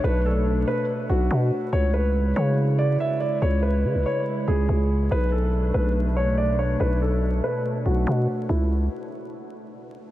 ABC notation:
X:1
M:4/4
L:1/16
Q:1/4=142
K:C#phr
V:1 name="Grand piano"
B2 A4 B2 z2 F6 | c2 B4 c2 z2 d2 e2 d2 | c2 B4 c2 z2 G6 | B2 A4 B2 z2 c2 d2 c2 |
B2 A4 B2 z2 F6 | E2 z12 z2 |]
V:2 name="Analog synth pad"
[B,,A,D]16 | [C,G,E]16- | [C,G,E]16 | [B,,A,D]16- |
[B,,A,D]16 | z16 |]
V:3 name="808-style bass" clef=bass
B,,,6 z4 B,,,2 B,,2 z2 | C,,6 C,6 z4 | C,,4 C, C,, z4 C,,2 C,,4 | B,,,6 B,,,8- B,,,2 |
B,,,6 z4 B,,,2 B,,2 z2 | C,,4 z12 |]